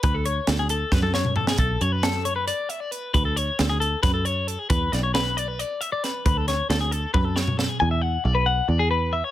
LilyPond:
<<
  \new Staff \with { instrumentName = "Clean electric guitar" } { \time 7/8 \key d \lydian \tempo 4 = 135 b'16 a'16 cis''8 a'16 gis'16 a'8 b'16 a'16 cis''8 a'16 gis'16 | a'8 cis''16 b'16 a'8 cis''16 b'16 d''8 e''16 d''16 b'8 | b'16 a'16 cis''8 a'16 gis'16 a'8 b'16 a'16 cis''8 a'16 gis'16 | b'8 d''16 cis''16 b'8 d''16 b'16 d''8 e''16 d''16 b'8 |
b'16 a'16 cis''8 a'16 gis'16 a'8 b'16 a'16 cis''8 a'16 gis'16 | gis''16 e''16 fis''8 d''16 b'16 fis''8 d''16 gis'16 b'8 e''16 cis''16 | }
  \new Staff \with { instrumentName = "Picked electric bass" } { \clef bass \time 7/8 \key d \lydian d,4 d,4 fis,4. | b,,8 fis,2 r4 | d,4 d,4 fis,4. | e,8 b,,2 r4 |
d,4 d,4 fis,4. | e,4 b,,4 e,4. | }
  \new DrumStaff \with { instrumentName = "Drums" } \drummode { \time 7/8 <hh bd>8 hh8 <hh sn>8 hh8 <bd sn>16 tommh16 sn16 toml16 tomfh16 sn16 | <hh bd>8 hh8 <hh sn>8 hh8 hh8 hh8 hh8 | <hh bd>8 hh8 <hh sn>8 hh8 <hh bd sn>8 hh8 hh8 | <hh bd>8 <hh sn>8 <hh sn>8 hh8 hh8 hh8 <hh sn>8 |
<hh bd>8 <hh sn>8 <hh sn>8 hh8 <bd tommh>8 sn16 toml16 sn8 | r4 r4 r4. | }
>>